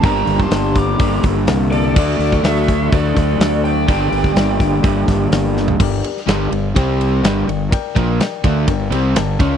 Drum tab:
CC |----------------|x---------------|----------------|x---------------|
RD |----------------|----------------|----------------|--x-x-x-x-x-x-x-|
HH |o-o-o-o-o-o-o-o-|--o-o-o-o-o-o-o-|o-o-o-o-o-o-o---|----------------|
SD |----o-------o---|----o-----o-o---|----o-----o-o-o-|---oo-------o---|
FT |----------------|----------------|---------------o|----------------|
BD |o--o--o-o-o-----|o--o--o-o-o-----|o--o--o-o-o-----|o-------o-------|

CC |----------------|
RD |x-x-x-x-x-x-x-x-|
HH |----------------|
SD |----o-------o---|
FT |----------------|
BD |o-o---o-o-----o-|